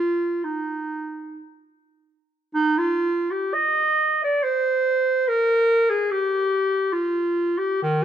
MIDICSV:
0, 0, Header, 1, 2, 480
1, 0, Start_track
1, 0, Tempo, 1023891
1, 687, Tempo, 1081081
1, 1167, Time_signature, 3, 2, 24, 8
1, 1167, Tempo, 990099
1, 1647, Tempo, 868307
1, 2607, Tempo, 818554
1, 3567, Tempo, 891530
1, 4179, End_track
2, 0, Start_track
2, 0, Title_t, "Clarinet"
2, 0, Program_c, 0, 71
2, 0, Note_on_c, 0, 65, 87
2, 205, Note_on_c, 0, 63, 63
2, 212, Note_off_c, 0, 65, 0
2, 685, Note_off_c, 0, 63, 0
2, 1165, Note_on_c, 0, 63, 97
2, 1280, Note_on_c, 0, 65, 90
2, 1287, Note_off_c, 0, 63, 0
2, 1538, Note_on_c, 0, 67, 88
2, 1545, Note_off_c, 0, 65, 0
2, 1647, Note_on_c, 0, 75, 111
2, 1655, Note_off_c, 0, 67, 0
2, 2021, Note_off_c, 0, 75, 0
2, 2034, Note_on_c, 0, 74, 92
2, 2142, Note_on_c, 0, 72, 96
2, 2150, Note_off_c, 0, 74, 0
2, 2612, Note_on_c, 0, 70, 105
2, 2621, Note_off_c, 0, 72, 0
2, 2974, Note_on_c, 0, 68, 88
2, 2983, Note_off_c, 0, 70, 0
2, 3096, Note_on_c, 0, 67, 93
2, 3105, Note_off_c, 0, 68, 0
2, 3577, Note_on_c, 0, 65, 85
2, 3585, Note_off_c, 0, 67, 0
2, 3928, Note_on_c, 0, 67, 84
2, 3936, Note_off_c, 0, 65, 0
2, 4049, Note_off_c, 0, 67, 0
2, 4059, Note_on_c, 0, 51, 105
2, 4179, Note_off_c, 0, 51, 0
2, 4179, End_track
0, 0, End_of_file